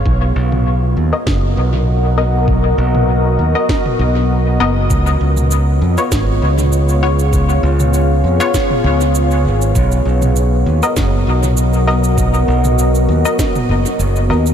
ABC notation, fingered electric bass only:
X:1
M:4/4
L:1/8
Q:"Swing 16ths" 1/4=99
K:Cblyd
V:1 name="Fingered electric bass" clef=bass
C,, C,,2 E,, G,,, C,,3- | C,, C,,2 E,, z C,,2 G,,, | D,, D,,2 F,, A,,, D,,3- | D,, D,,2 F,, z D,,2 A,,, |
C,, C,,2 E,, G,,, C,,3- | C,, C,,2 E,, z G,,, G,,, E,, |]